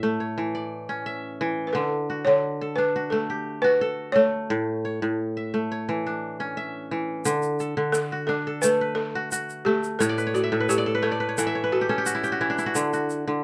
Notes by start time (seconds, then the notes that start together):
Already playing: A2 C#5 E5
0.03 A3
0.20 C#5
0.38 E3
0.55 D5
0.89 C#4
1.06 E5
1.41 E3
1.67 B4
1.73 D3 A4
2.10 F#4
2.25 D3 C#5
2.61 A4
2.76 D4 B4
2.96 F#4
3.10 A3 A4
3.30 G4
3.62 F#4 B4
3.81 A4
4.12 A3 C#5
4.50 A2
4.85 C#5
5.02 A2
5.37 E5
5.54 A3
5.72 C#5
5.89 E3
6.07 D4
6.40 C#4
6.57 E5
6.91 E3
7.25 D3, shaker
7.42 shaker
7.60 A4, shaker
7.77 D3
7.92 A4, shaker
8.12 F#4
8.27 D4 A4
8.47 A4
8.62 A3 B4, shaker
8.81 B4
8.95 A4
9.15 F#4
9.32 F#4, shaker
9.50 shaker
9.65 A3 G4
9.84 shaker
9.99 A2 A4 C#5, shaker
10.09 D5
10.18 B4, shaker
10.27 C#5
10.34 F#4 D5, shaker
10.44 E5
10.52 A2 A4
10.60 B4
10.69 G4 C#5, shaker
10.78 D5
10.86 A4
10.95 B4
11.02 A3 A4 C#5
11.12 D5
11.20 B4
11.29 C#5
11.38 E3 A4 F#5, shaker
11.47 E5
11.55 C#5
11.64 B4
11.72 F#4 A4
11.81 G4
11.89 C#4 A4
11.98 G4
12.06 F#4, shaker
12.15 E4
12.24 G4, shaker
12.32 F#4
12.41 E3 E4
12.50 D4
12.58 E4, shaker
12.66 F#4
12.75 D3, shaker
12.93 F#4, shaker
13.10 shaker
13.27 D3